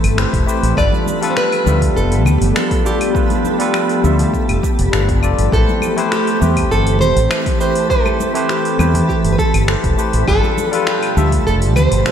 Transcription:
Already playing: ambient pad E3 A3 C4 A4, synth texture A4 B5
0.04 fretless electric bass G1, open hi-hat, cabasa, claves
0.16 tine electric piano A3 E4 G4 B4 C5, finger snap, cabasa
0.33 fretless electric bass E1, kick, open hi-hat, cabasa
0.46 tine electric piano A3 E4 G4 B4 C5, cabasa
0.63 fretless electric bass A1, open hi-hat, cabasa
0.76 fretless electric bass G1, ambient pad F3 B3 G4, tine electric piano G3 D4 F4 A4 B4, nylon-string guitar D5, kick, cabasa, claves
0.93 high conga, cabasa
1.06 high conga, cabasa
1.21 tine electric piano G3 D4 F4 A4 B4, open hi-hat, cabasa
1.30 nylon-string guitar C5
1.37 nylon-string guitar B4, finger snap, cabasa
1.52 open hi-hat, cabasa, claves
1.65 fretless electric bass D2, tine electric piano G3 D4 F4 A4 E5, high conga, cabasa
1.82 kick, open hi-hat, cabasa
1.96 fretless electric bass F1, nylon-string guitar A4, cabasa
2.12 open hi-hat, cabasa
2.25 fretless electric bass D2, low conga, cabasa, claves
2.41 fretless electric bass G1, open hi-hat, cabasa
2.54 tine electric piano G3 D4 F4 A4 B4, nylon-string guitar A4, finger snap, cabasa
2.71 kick, open hi-hat, cabasa
2.83 tine electric piano G3 D4 F4 A4 D5, nylon-string guitar G4, cabasa
3.01 open hi-hat, cabasa, claves
3.13 tine electric piano G3 D4 F4 A4 B4, kick, cabasa
3.30 open hi-hat, high conga, cabasa
3.45 high conga, cabasa
3.58 tine electric piano G3 D4 F4 A4 B4, open hi-hat, cabasa
3.74 finger snap, cabasa, claves
3.89 open hi-hat, cabasa
4.02 fretless electric bass D2, tine electric piano G3 D4 F4 A4 E5, high conga, cabasa
4.19 open hi-hat, low conga, cabasa
4.34 kick, cabasa
4.49 fretless electric bass F1, open hi-hat, cabasa, claves
4.63 kick, cabasa
4.79 fretless electric bass F1, open hi-hat, cabasa
4.91 fretless electric bass G1, tine electric piano G3 D4 F4 A4 B4, finger snap, cabasa
5.09 kick, open hi-hat, cabasa
5.21 fretless electric bass F1, tine electric piano G3 D4 F4 A4 D5, cabasa, claves
5.39 fretless electric bass G1, open hi-hat, cabasa
5.51 fretless electric bass A1, ambient pad E3 C4, tine electric piano A3 E4 G4 B4 C5, nylon-string guitar A4, kick, cabasa
5.68 high conga, cabasa
5.82 high conga, cabasa, claves
5.96 tine electric piano A3 E4 G4 B4 C5, open hi-hat, cabasa
6.12 nylon-string guitar G4, finger snap, cabasa
6.27 open hi-hat, cabasa
6.40 fretless electric bass E2, tine electric piano A3 E4 G4 B4 C5, high conga, cabasa
6.57 kick, open hi-hat, cabasa, claves
6.71 fretless electric bass G1, nylon-string guitar A4, cabasa
6.87 open hi-hat, cabasa
7.01 fretless electric bass E1, nylon-string guitar C5, low conga, cabasa
7.16 fretless electric bass A1, open hi-hat, cabasa
7.29 tine electric piano A3 E4 G4 B4 C5, finger snap, cabasa, claves
7.46 kick, open hi-hat, cabasa
7.59 tine electric piano A3 E4 G4 B4 C5, nylon-string guitar C5, cabasa
7.75 open hi-hat, cabasa
7.89 tine electric piano A3 E4 G4 B4 C5, nylon-string guitar A4, kick, cabasa
8.06 high conga, cabasa, claves
8.20 high conga, cabasa
8.34 tine electric piano A3 E4 G4 B4 C5, open hi-hat, cabasa
8.49 nylon-string guitar G4, finger snap, cabasa
8.65 open hi-hat, cabasa
8.78 fretless electric bass E2, tine electric piano A3 E4 G4 B4 C5, high conga, cabasa, claves
8.94 open hi-hat, low conga, cabasa
9.09 nylon-string guitar G4, kick, cabasa
9.24 fretless electric bass G1, open hi-hat, cabasa
9.33 nylon-string guitar B4
9.38 nylon-string guitar A4, kick, cabasa
9.54 fretless electric bass G1, open hi-hat, cabasa, claves
9.66 tine electric piano A3 E4 G4 B4 C5, finger snap, cabasa
9.84 fretless electric bass E1, kick, open hi-hat, cabasa
9.97 tine electric piano A3 E4 G4 B4 C5, cabasa
10.13 fretless electric bass A1, open hi-hat, cabasa
10.26 fretless electric bass G1, ambient pad B2 F3 A3 G4, tine electric piano G3 D4 F4 A4 B4, nylon-string guitar A4, kick, cabasa, claves
10.43 high conga, cabasa
10.57 high conga, cabasa
10.71 tine electric piano G3 D4 F4 A4 B4, open hi-hat, cabasa
10.87 nylon-string guitar G4, finger snap, cabasa
11.03 open hi-hat, cabasa, claves
11.15 fretless electric bass D2, tine electric piano G3 D4 F4 A4 E5, high conga, cabasa
11.32 kick, open hi-hat, cabasa
11.47 fretless electric bass F1, nylon-string guitar A4, cabasa
11.62 open hi-hat, cabasa
11.76 fretless electric bass D2, nylon-string guitar C5, low conga, cabasa, claves
11.92 fretless electric bass G1, open hi-hat, cabasa
12.04 tine electric piano G3 D4 F4 A4 B4, finger snap, cabasa

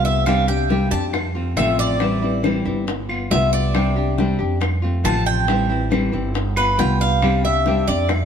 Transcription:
Already playing: upright bass C2, nylon-string guitar G3 B3 F4
0.05 cuban tres E5, high bongo
0.26 nylon-string guitar C3 G3 C4 D4 G4, cuban tres F5, high bongo, claves
0.47 nylon-string guitar C4 D4 G4, cuban tres G5
0.69 nylon-string guitar C3 G3 C4 D4 G4, high bongo
0.91 upright bass F2, nylon-string guitar C4 D4 G4, cuban tres A5
1.13 muted nylon-string guitar stroke, high bongo, claves
1.35 nylon-string guitar A3 C4 F4
1.56 upright bass A1, nylon-string guitar C3 F3 A3 C4 F4, cuban tres E5, high bongo, low bongo, claves
1.79 cuban tres D5
2.00 nylon-string guitar E3 G3 C4 E4, high bongo
2.22 nylon-string guitar G3 C4 E4, high bongo
2.43 nylon-string guitar E3 G3 C4 E4, high bongo, claves
2.65 upright bass G1, nylon-string guitar G3 C4 E4, high bongo
2.87 muted nylon-string guitar stroke, high bongo
3.09 nylon-string guitar B3 F4, claves
3.30 upright bass C2, nylon-string guitar G3 B3 F4, cuban tres E5, high bongo, low bongo
3.53 cuban tres D5, high bongo
3.74 nylon-string guitar C3 G3 C4 D4 G4, high bongo, claves
3.96 nylon-string guitar C4 D4 G4
4.18 nylon-string guitar C3 G3 C4 D4 G4, high bongo
4.39 upright bass F2, nylon-string guitar C4 D4 G4
4.60 muted nylon-string guitar stroke, high bongo, claves
4.82 nylon-string guitar A3 C4 F4
5.04 upright bass A1, nylon-string guitar C3 F3 A3 C4 F4, cuban tres A5, high bongo, low bongo, claves
5.26 cuban tres G5
5.47 nylon-string guitar E3 G3 C4 E4, high bongo
5.69 nylon-string guitar G3 C4 E4, high bongo
5.90 nylon-string guitar E3 G3 C4 E4, high bongo, claves
6.12 upright bass G1, nylon-string guitar G3 C4 E4, high bongo
6.34 muted nylon-string guitar stroke, high bongo
6.56 nylon-string guitar B3 F4, cuban tres B4, claves
6.78 upright bass C2, nylon-string guitar G3 B3 F4, cuban tres G5, high bongo, low bongo
7.01 cuban tres F5, high bongo
7.22 nylon-string guitar C3 G3 C4 D4 G4, high bongo, claves
7.44 nylon-string guitar C4 D4 G4, cuban tres E5
7.66 nylon-string guitar C3 G3 C4 D4 G4, high bongo
7.87 upright bass F2, nylon-string guitar C4 D4 G4, cuban tres D5
8.09 muted nylon-string guitar stroke, high bongo, claves

